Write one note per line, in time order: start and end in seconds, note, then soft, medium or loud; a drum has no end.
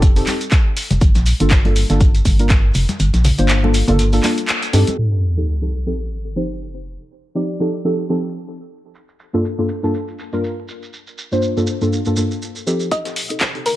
0.00 0.23 F1 medium
0.00 kick loud
0.00 closed hi-hat medium
0.00 tambourine medium
0.00 shekere medium
0.16 0.34 C4 medium
0.16 0.34 D#4 medium
0.16 0.34 G4 medium
0.16 0.34 A4 medium
0.16 open hi-hat medium
0.16 shekere soft
0.27 clap medium
0.27 open hi-hat medium
0.27 tambourine medium
0.27 high conga medium
0.27 shekere medium
0.41 closed hi-hat soft
0.41 shekere soft
0.52 kick loud
0.52 snare loud
0.52 clap loud
0.52 closed hi-hat medium
0.52 tambourine medium
0.52 shekere soft
0.77 open hi-hat loud
0.77 open hi-hat medium
0.77 shekere medium
0.91 0.99 F1 medium
0.91 closed hi-hat medium
0.91 high conga medium
0.91 shekere soft
1.01 1.12 G1 loud
1.01 kick loud
1.01 closed hi-hat medium
1.01 tambourine medium
1.01 shekere soft
1.15 1.33 A#1 medium
1.15 snare soft
1.15 closed hi-hat soft
1.15 shekere soft
1.26 open hi-hat loud
1.26 tambourine medium
1.26 shekere medium
1.40 1.84 G1 medium
1.40 1.50 A#3 medium
1.40 1.50 D4 medium
1.40 1.50 F4 medium
1.40 1.51 A4 medium
1.40 closed hi-hat medium
1.40 shekere soft
1.51 kick loud
1.51 snare loud
1.51 clap loud
1.51 closed hi-hat medium
1.51 tambourine medium
1.51 shekere medium
1.64 1.75 A#3 medium
1.64 1.75 D4 medium
1.64 1.75 F4 medium
1.64 1.75 A4 medium
1.64 closed hi-hat soft
1.64 high conga medium
1.76 open hi-hat loud
1.76 tambourine medium
1.76 shekere medium
1.89 2.21 G1 loud
1.89 2.00 A#3 medium
1.89 2.00 D4 medium
1.89 2.00 F4 medium
1.89 2.00 A4 medium
1.89 snare medium
1.89 closed hi-hat soft
1.89 shekere soft
2.00 kick loud
2.00 closed hi-hat medium
2.00 tambourine medium
2.00 shekere soft
2.15 closed hi-hat soft
2.15 shekere soft
2.25 2.70 G1 loud
2.25 kick medium
2.25 open hi-hat loud
2.25 high conga medium
2.25 shekere medium
2.39 2.49 A#3 medium
2.39 2.49 D4 medium
2.39 2.50 F4 medium
2.39 2.50 A#4 medium
2.39 closed hi-hat medium
2.39 shekere soft
2.50 kick loud
2.50 snare loud
2.50 clap loud
2.50 closed hi-hat medium
2.50 tambourine medium
2.50 shekere medium
2.74 2.85 F1 loud
2.74 open hi-hat loud
2.74 tambourine medium
2.74 shekere medium
2.88 snare soft
2.88 closed hi-hat medium
2.88 high conga medium
2.88 shekere soft
3.00 3.10 G1 loud
3.00 closed hi-hat medium
3.00 tambourine medium
3.00 shekere medium
3.14 3.31 A#1 medium
3.14 snare soft
3.14 closed hi-hat soft
3.14 shekere soft
3.24 open hi-hat loud
3.24 tambourine medium
3.24 low conga medium
3.24 shekere medium
3.38 3.82 G1 medium
3.38 3.60 A#3 medium
3.38 3.60 D4 medium
3.38 3.60 F4 medium
3.38 3.60 C5 medium
3.38 closed hi-hat medium
3.38 shekere soft
3.49 snare loud
3.49 clap loud
3.49 closed hi-hat medium
3.49 tambourine medium
3.49 shekere medium
3.63 3.73 A#3 medium
3.63 3.73 D4 medium
3.63 3.74 F4 medium
3.63 3.74 A4 medium
3.63 high conga medium
3.74 open hi-hat loud
3.74 tambourine medium
3.74 shekere loud
3.88 4.19 G1 loud
3.88 4.06 A#3 medium
3.88 4.06 D4 medium
3.88 4.06 F4 medium
3.88 4.06 A4 loud
3.88 closed hi-hat soft
3.88 low conga medium
3.88 shekere soft
3.99 closed hi-hat medium
3.99 tambourine medium
3.99 shekere medium
4.12 4.21 A#3 medium
4.12 4.21 D4 medium
4.12 4.22 F4 medium
4.12 4.22 A4 medium
4.12 open hi-hat medium
4.12 shekere soft
4.23 4.37 A#3 medium
4.23 4.37 D4 medium
4.23 4.37 F4 medium
4.23 4.37 A4 medium
4.23 clap medium
4.23 open hi-hat loud
4.23 tambourine medium
4.23 high conga medium
4.23 shekere medium
4.37 closed hi-hat medium
4.37 shekere soft
4.48 clap loud
4.48 closed hi-hat medium
4.48 tambourine medium
4.48 shekere soft
4.63 closed hi-hat soft
4.63 shekere soft
4.73 4.84 G2 medium
4.73 5.23 C4 medium
4.73 5.23 D#4 medium
4.73 5.23 G4 medium
4.73 5.23 A4 loud
4.73 open hi-hat loud
4.73 tambourine medium
4.73 shekere loud
4.87 closed hi-hat medium
4.87 high conga medium
4.87 shekere soft
4.98 sub drop medium
5.36 5.47 F3 medium
5.36 5.47 C4 medium
5.36 5.47 D#4 medium
5.36 5.47 G4 medium
5.36 5.47 A4 medium
5.61 5.72 F3 medium
5.61 5.72 C4 medium
5.61 5.72 D#4 medium
5.61 5.72 G4 medium
5.61 5.72 A4 medium
5.86 5.96 F3 medium
5.86 5.97 C4 medium
5.86 5.97 D#4 medium
5.86 5.97 G4 medium
5.86 5.97 A4 medium
6.36 6.46 F3 medium
6.36 6.46 C4 medium
6.36 6.46 D#4 medium
6.36 6.46 G4 medium
6.36 6.46 C5 medium
7.35 7.56 F3 medium
7.35 7.57 C4 medium
7.35 7.57 D#4 medium
7.35 7.57 G4 medium
7.35 7.57 D5 medium
7.60 7.70 F3 medium
7.60 7.70 C4 medium
7.60 7.70 D#4 medium
7.60 7.70 G4 medium
7.60 7.70 A4 medium
7.84 8.02 F3 medium
7.84 8.03 C4 medium
7.84 8.03 D#4 medium
7.84 8.03 G4 medium
7.84 8.03 A4 loud
8.09 8.27 F3 medium
8.09 8.27 C4 medium
8.09 8.27 D#4 medium
8.09 8.28 G4 medium
8.09 8.28 A4 medium
8.95 shekere medium
9.08 shekere soft
9.20 shekere medium
9.33 9.43 G2 medium
9.33 9.44 A#3 medium
9.33 9.44 D4 medium
9.33 9.44 F4 medium
9.33 9.44 A4 medium
9.33 shekere soft
9.45 shekere medium
9.58 9.68 G2 medium
9.58 9.68 A#3 medium
9.58 9.69 D4 medium
9.58 9.69 F4 medium
9.58 9.69 A4 medium
9.69 shekere medium
9.83 9.93 G2 medium
9.83 9.93 A#3 medium
9.83 9.93 D4 medium
9.83 9.93 F4 medium
9.83 9.94 A4 medium
9.83 shekere soft
9.94 shekere medium
10.08 shekere soft
10.19 shekere medium
10.32 10.43 G2 medium
10.32 10.43 A#3 medium
10.32 10.43 D4 medium
10.32 10.43 F4 medium
10.32 10.43 A#4 medium
10.32 shekere soft
10.44 shekere medium
10.68 shekere medium
10.83 shekere soft
10.93 shekere soft
11.07 shekere soft
11.18 shekere medium
11.31 11.53 G2 medium
11.31 11.53 A#3 medium
11.31 11.53 D4 medium
11.31 11.54 F4 medium
11.31 11.54 C5 medium
11.31 shekere soft
11.42 shekere medium
11.56 11.67 G2 medium
11.56 11.67 A#3 medium
11.56 11.67 D4 medium
11.56 11.67 F4 medium
11.56 11.67 A4 medium
11.56 shekere soft
11.67 shekere medium
11.81 11.99 G2 medium
11.81 11.99 A#3 medium
11.81 11.99 D4 medium
11.81 11.99 F4 medium
11.81 12.00 A4 loud
11.81 shekere soft
11.93 shekere soft
12.05 12.15 G2 medium
12.05 12.15 A#3 medium
12.05 12.15 D4 medium
12.05 12.15 F4 medium
12.05 12.15 A4 medium
12.05 shekere soft
12.16 12.30 G2 medium
12.16 12.30 A#3 medium
12.16 12.30 D4 medium
12.16 12.30 F4 medium
12.16 12.30 A4 medium
12.16 shekere medium
12.31 shekere soft
12.42 shekere medium
12.56 shekere soft
12.66 13.16 F3 medium
12.66 13.16 C4 medium
12.66 13.16 D#4 medium
12.66 13.16 G4 medium
12.66 13.17 A4 medium
12.66 shekere medium
12.80 shekere soft
12.91 13.14 D#5 loud
12.91 kick loud
12.91 closed hi-hat medium
12.91 tambourine medium
12.91 riser medium
12.91 shekere soft
13.05 snare soft
13.05 closed hi-hat soft
13.05 shekere soft
13.16 open hi-hat loud
13.16 tambourine medium
13.16 shekere medium
13.30 13.40 C4 medium
13.30 13.40 D#4 medium
13.30 13.40 G4 medium
13.30 13.41 A4 loud
13.30 closed hi-hat medium
13.30 shekere soft
13.41 kick loud
13.41 snare loud
13.41 clap loud
13.41 closed hi-hat medium
13.41 tambourine medium
13.41 shekere soft
13.55 13.65 C4 medium
13.55 13.65 D#4 medium
13.55 13.65 G4 medium
13.55 13.65 A4 medium
13.55 closed hi-hat soft
13.66 13.76 A#4 medium
13.66 open hi-hat loud
13.66 tambourine medium
13.66 shekere medium